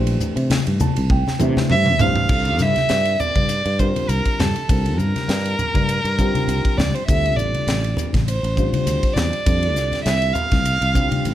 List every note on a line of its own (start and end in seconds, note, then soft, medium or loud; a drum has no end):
0.00 0.16 A#1 medium
0.00 0.95 E3 medium
0.00 0.96 A3 medium
0.00 0.96 D4 medium
0.00 0.96 G4 medium
0.00 0.96 C5 medium
0.07 ride medium
0.20 hi-hat pedal medium
0.20 low conga medium
0.36 0.48 C3 medium
0.36 ride medium
0.50 snare loud
0.50 ride medium
0.50 high conga medium
0.67 0.79 G2 medium
0.67 ride medium
0.80 1.08 A5 medium
0.80 muted fretless electric bass stroke soft
0.80 hi-hat pedal medium
0.80 high conga medium
0.80 low conga medium
0.96 1.23 C2 medium
0.96 ride medium
1.10 1.38 G5 medium
1.10 kick medium
1.10 high tom medium
1.27 snare soft
1.27 high conga medium
1.38 1.55 C3 medium
1.38 1.92 E3 medium
1.38 1.92 A3 medium
1.38 1.92 D4 medium
1.38 1.92 G4 medium
1.38 1.68 C5 medium
1.38 1.68 E5 medium
1.38 hi-hat pedal medium
1.38 mid tom medium
1.38 low conga medium
1.57 muted fretless electric bass stroke soft
1.57 snare medium
1.57 high conga medium
1.70 1.99 G2 medium
1.70 1.99 C5 medium
1.70 2.02 E5 loud
1.70 mid tom medium
1.86 mid tom medium
1.99 2.25 C2 medium
1.99 2.26 E3 medium
1.99 2.26 A3 medium
1.99 2.26 D4 medium
1.99 2.26 G4 medium
1.99 2.27 C5 medium
1.99 2.63 F5 medium
1.99 floor tom medium
1.99 hi-hat pedal medium
1.99 low conga medium
2.16 floor tom medium
2.28 2.60 C2 medium
2.28 3.34 D3 medium
2.28 3.34 G3 soft
2.28 3.34 C4 soft
2.28 3.34 F4 medium
2.28 3.35 A4 medium
2.28 kick loud
2.28 crash medium
2.45 ride soft
2.59 2.74 G2 medium
2.59 3.22 E5 loud
2.59 snare soft
2.59 hi-hat pedal medium
2.59 high conga medium
2.76 snare soft
2.76 ride soft
2.76 high conga medium
2.89 3.16 G2 medium
2.89 snare medium
2.89 hi-hat pedal medium
2.89 ride medium
3.05 ride medium
3.19 3.81 D5 loud
3.19 hi-hat pedal medium
3.19 low conga medium
3.35 3.62 G2 medium
3.35 kick medium
3.35 ride medium
3.35 high conga medium
3.49 hi-hat pedal medium
3.49 ride medium
3.65 3.91 G2 medium
3.65 ride medium
3.79 4.58 D3 medium
3.79 4.58 G3 medium
3.79 4.58 C4 medium
3.79 4.59 F4 medium
3.79 4.59 A#4 medium
3.79 4.11 C5 medium
3.79 kick medium
3.79 hi-hat pedal medium
3.96 ride medium
3.96 high conga medium
4.09 4.23 C2 medium
4.09 4.41 A#4 medium
4.09 hi-hat pedal medium
4.09 ride medium
4.25 muted fretless electric bass stroke soft
4.25 kick medium
4.25 ride medium
4.39 4.53 G2 medium
4.39 4.99 A4 medium
4.39 snare loud
4.39 hi-hat pedal medium
4.39 high conga soft
4.39 low conga medium
4.56 ride medium
4.68 4.98 C2 medium
4.68 5.73 D3 soft
4.68 5.74 G3 medium
4.68 5.74 C4 soft
4.68 5.74 F4 soft
4.68 5.74 A#4 medium
4.68 kick loud
4.68 hi-hat pedal medium
4.68 ride medium
4.86 ride medium
4.98 5.13 G2 loud
4.98 6.79 A#4 medium
4.98 hi-hat pedal medium
4.98 high conga medium
5.16 snare soft
5.16 ride medium
5.16 high conga medium
5.28 5.54 G2 medium
5.28 snare medium
5.28 hi-hat pedal medium
5.28 ride medium
5.45 ride medium
5.59 hi-hat pedal medium
5.59 low conga medium
5.74 6.01 G2 medium
5.74 kick medium
5.74 ride medium
5.74 high conga medium
5.89 hi-hat pedal medium
5.89 ride medium
6.04 6.30 G2 medium
6.04 ride medium
6.18 6.97 D3 medium
6.18 6.97 G3 medium
6.18 6.97 C4 medium
6.18 6.98 F4 medium
6.18 6.98 G4 medium
6.18 kick medium
6.18 hi-hat pedal medium
6.35 ride medium
6.35 high conga medium
6.48 6.62 C2 medium
6.48 hi-hat pedal medium
6.48 ride medium
6.65 kick medium
6.65 ride medium
6.78 6.92 C#2 medium
6.78 6.96 D5 medium
6.78 snare loud
6.78 hi-hat pedal medium
6.78 high conga medium
6.78 low conga medium
6.94 7.06 C5 medium
6.94 ride medium
7.06 7.37 D2 medium
7.06 8.12 D3 medium
7.06 8.13 G3 medium
7.06 8.13 C4 medium
7.06 8.13 F4 soft
7.06 8.13 A4 medium
7.06 7.38 E5 medium
7.06 kick loud
7.06 hi-hat pedal medium
7.06 ride medium
7.26 ride soft
7.36 7.52 A1 medium
7.36 7.97 D5 medium
7.36 hi-hat pedal medium
7.36 high conga medium
7.54 ride soft
7.54 high conga medium
7.67 7.93 A1 medium
7.67 snare medium
7.67 hi-hat pedal medium
7.67 ride medium
7.84 ride soft
7.97 hi-hat pedal medium
7.97 low conga medium
8.13 8.40 A1 medium
8.13 kick medium
8.13 snare soft
8.13 ride medium
8.13 high conga medium
8.27 8.70 C5 medium
8.27 hi-hat pedal medium
8.27 ride medium
8.43 8.69 A1 medium
8.43 ride medium
8.57 9.36 D3 medium
8.57 9.36 G3 medium
8.57 9.36 C4 medium
8.57 9.36 F4 medium
8.57 9.36 C5 medium
8.57 kick medium
8.57 hi-hat pedal medium
8.72 9.15 C5 medium
8.72 ride medium
8.72 high conga medium
8.86 9.01 D2 medium
8.86 hi-hat pedal medium
8.86 ride medium
9.03 muted fretless electric bass stroke soft
9.03 kick medium
9.03 ride medium
9.14 9.31 E2 medium
9.14 10.03 D5 medium
9.14 snare loud
9.14 hi-hat pedal medium
9.14 high conga medium
9.14 low conga medium
9.33 ride medium
9.46 9.76 F2 medium
9.46 10.51 D3 soft
9.46 10.51 G3 soft
9.46 10.51 C4 medium
9.46 10.52 F4 medium
9.46 10.52 A4 medium
9.46 kick loud
9.46 hi-hat pedal medium
9.46 ride medium
9.63 ride medium
9.76 9.90 C2 medium
9.76 snare soft
9.76 hi-hat pedal medium
9.92 snare soft
9.92 ride medium
9.92 high conga medium
10.04 10.32 C2 medium
10.04 10.35 E5 medium
10.04 snare medium
10.04 hi-hat pedal medium
10.04 ride medium
10.22 ride medium
10.33 11.34 F5 medium
10.33 hi-hat pedal medium
10.33 low conga medium
10.51 10.78 C2 medium
10.51 kick medium
10.51 snare soft
10.51 ride medium
10.51 high conga medium
10.65 hi-hat pedal medium
10.65 ride medium
10.81 11.07 C2 medium
10.81 ride medium
10.94 11.34 D3 medium
10.94 11.34 G3 medium
10.94 11.34 C4 medium
10.94 11.34 F4 medium
10.94 11.34 G4 medium
10.94 kick medium
10.94 hi-hat pedal medium
11.12 ride medium
11.12 high conga medium
11.25 11.34 A1 medium
11.25 hi-hat pedal medium
11.25 ride medium